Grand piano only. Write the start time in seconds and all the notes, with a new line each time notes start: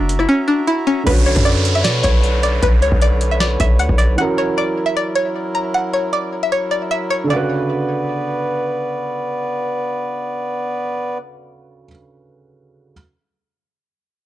Already playing: E3 C#4 F#4 A#4
1.04 D3 C#4
1.08 F#4 B4
4.16 E3 C#4 F#4
4.22 A#4
7.24 C#3 D3
7.32 F#4 B4